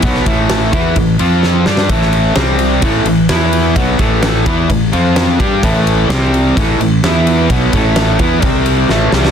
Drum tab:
RD |x-x-x-x-x-x-----|x-x-x-x-x-x-x-x-|x-x-x-x-x-x-x-x-|x-x-x-x-x-x-x-x-|
SD |-o--o-------o-oo|-o--o-------o---|----o-------o---|----o-------o---|
BD |o-o---o-o-------|o-------o-------|o-o---o-o-----o-|o-------o-------|

RD |x-x-x-x-x-x-----|
SD |----o-------o-oo|
BD |o-o---o-o-------|